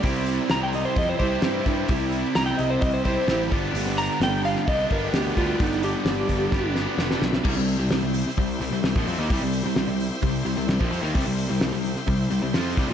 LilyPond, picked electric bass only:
\new Staff \with { instrumentName = "Picked electric bass" } { \clef bass \time 4/4 \key c \major \tempo 4 = 130 c,4 c,4 f,8 c,8 g,8 g,8 | c,4 c,8 c,8 c,4 a,,8 g,,8 | g,,4 g,,4 c,8 g,,8 d,8 d,8 | g,,4 g,,8 g,,8 g,,4 f,,8 b,,8 |
c,16 c,8 c,16 c,16 c,8 r16 c,8 c,16 c,16 c,16 bes,,16 f,16 ees,16 | c,16 c,8 c,16 c,16 c,8 r16 c,8 c,16 c,16 c,16 bes,,16 f,16 ees,16 | c,16 c,8 c,16 c,16 c,8 r16 c,8 c,16 c,16 f,8 c,16 bes,,16 | }